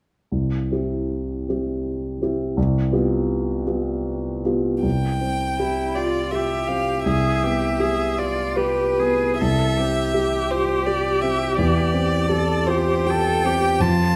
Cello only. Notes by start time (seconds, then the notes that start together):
5.59 E4
5.98 F4
6.34 G4
7.07 G#4
7.43 G4
7.80 G#4
8.17 F4
8.57 G4
8.99 G#4
9.41 A4
9.77 G4
12.31 A4
12.68 G4
13.10 A4
13.46 G4
13.82 F4